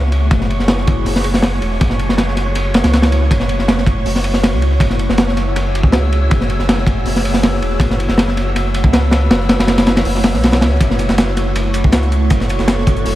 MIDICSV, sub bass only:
0, 0, Header, 1, 2, 480
1, 0, Start_track
1, 0, Key_signature, 3, "minor"
1, 0, Tempo, 375000
1, 393, Time_signature, 4, 2, 24, 8
1, 16835, End_track
2, 0, Start_track
2, 0, Title_t, "Sub bass"
2, 0, Program_c, 0, 38
2, 0, Note_on_c, 0, 37, 98
2, 378, Note_off_c, 0, 37, 0
2, 398, Note_on_c, 0, 30, 102
2, 739, Note_off_c, 0, 30, 0
2, 758, Note_on_c, 0, 30, 92
2, 1335, Note_off_c, 0, 30, 0
2, 1353, Note_on_c, 0, 30, 89
2, 2055, Note_off_c, 0, 30, 0
2, 2075, Note_on_c, 0, 28, 101
2, 2291, Note_off_c, 0, 28, 0
2, 2316, Note_on_c, 0, 30, 97
2, 2659, Note_off_c, 0, 30, 0
2, 2678, Note_on_c, 0, 30, 91
2, 3618, Note_off_c, 0, 30, 0
2, 3636, Note_on_c, 0, 37, 97
2, 4214, Note_off_c, 0, 37, 0
2, 4234, Note_on_c, 0, 30, 100
2, 4578, Note_off_c, 0, 30, 0
2, 4598, Note_on_c, 0, 30, 94
2, 5175, Note_off_c, 0, 30, 0
2, 5195, Note_on_c, 0, 30, 90
2, 5798, Note_on_c, 0, 37, 100
2, 5817, Note_off_c, 0, 30, 0
2, 6135, Note_off_c, 0, 37, 0
2, 6145, Note_on_c, 0, 30, 103
2, 6493, Note_off_c, 0, 30, 0
2, 6520, Note_on_c, 0, 30, 95
2, 7459, Note_off_c, 0, 30, 0
2, 7467, Note_on_c, 0, 37, 97
2, 8050, Note_off_c, 0, 37, 0
2, 8082, Note_on_c, 0, 30, 100
2, 8421, Note_off_c, 0, 30, 0
2, 8438, Note_on_c, 0, 30, 93
2, 9015, Note_off_c, 0, 30, 0
2, 9034, Note_on_c, 0, 30, 88
2, 9735, Note_off_c, 0, 30, 0
2, 9756, Note_on_c, 0, 28, 100
2, 9971, Note_off_c, 0, 28, 0
2, 9980, Note_on_c, 0, 30, 98
2, 10330, Note_off_c, 0, 30, 0
2, 10358, Note_on_c, 0, 30, 93
2, 11298, Note_off_c, 0, 30, 0
2, 11314, Note_on_c, 0, 37, 94
2, 11893, Note_off_c, 0, 37, 0
2, 11913, Note_on_c, 0, 30, 101
2, 12257, Note_off_c, 0, 30, 0
2, 12276, Note_on_c, 0, 30, 94
2, 12854, Note_off_c, 0, 30, 0
2, 12871, Note_on_c, 0, 30, 89
2, 13235, Note_on_c, 0, 35, 92
2, 13255, Note_off_c, 0, 30, 0
2, 13590, Note_on_c, 0, 37, 91
2, 13609, Note_off_c, 0, 35, 0
2, 13809, Note_off_c, 0, 37, 0
2, 13831, Note_on_c, 0, 30, 100
2, 14176, Note_off_c, 0, 30, 0
2, 14196, Note_on_c, 0, 30, 94
2, 15137, Note_off_c, 0, 30, 0
2, 15159, Note_on_c, 0, 37, 93
2, 15736, Note_off_c, 0, 37, 0
2, 15752, Note_on_c, 0, 30, 98
2, 16097, Note_off_c, 0, 30, 0
2, 16119, Note_on_c, 0, 30, 92
2, 16696, Note_off_c, 0, 30, 0
2, 16715, Note_on_c, 0, 30, 89
2, 16835, Note_off_c, 0, 30, 0
2, 16835, End_track
0, 0, End_of_file